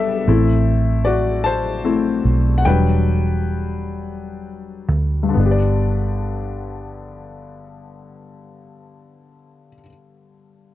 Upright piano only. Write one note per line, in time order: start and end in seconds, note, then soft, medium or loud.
0.00 0.29 G3 soft
0.00 0.29 B3 soft
0.00 0.29 D4 soft
0.00 0.29 G4 medium
0.00 1.02 A4 medium
0.00 0.29 D5 medium
0.00 1.09 E5 medium
0.28 1.83 A3 soft
0.28 1.83 C4 soft
0.28 1.84 E4 medium
1.05 1.42 F#4 medium
1.05 1.45 D5 medium
1.44 2.22 C5 medium
1.44 2.21 A5 medium
1.84 2.21 A3 soft
1.84 2.21 C4 soft
1.84 2.21 E4 soft
2.58 2.66 F#5 medium
2.65 3.23 F#3 soft
2.65 3.23 G3 soft
2.65 3.23 D4 soft
2.65 4.85 B4 medium
2.65 4.84 G5 medium
5.23 9.68 G2 soft
5.29 9.73 D3 soft
5.34 9.79 B3 soft
5.40 9.82 D4 soft
5.45 9.84 G4 soft
5.51 9.87 D5 soft